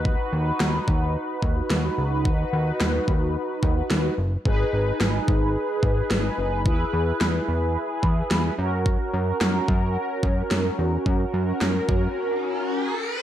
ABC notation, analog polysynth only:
X:1
M:4/4
L:1/8
Q:1/4=109
K:B
V:1 name="Analog polysynth"
[DFB]8- | [DFB]6- [DFB] z | [DGB]8 | [EGB]6- [EGB] [CFA]- |
[CFA]8- | [CFA]6- [CFA] z |]